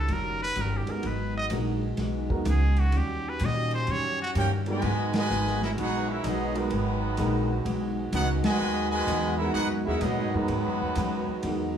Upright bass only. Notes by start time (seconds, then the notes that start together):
0.09 F#1
0.57 G1
0.87 muted upright bass stroke
1.04 G#1
1.51 A#1
1.98 B1
2.46 C#2
2.93 D#2
3.41 A#2
3.88 F#2
4.35 G2
4.83 G#2
5.30 G#1
5.77 A#1
6.24 B1
6.71 G#1
7.18 A#1
7.65 B1
8.13 C#2
8.46 muted upright bass stroke
8.60 D#2
9.07 E2
9.54 G#2
9.71 F#2
9.87 D#2
10.01 A#2
10.18 G#2
10.34 F#2
10.49 G#2
10.66 F#2
10.81 D#2
10.96 F#2
11.28 muted upright bass stroke
11.43 E2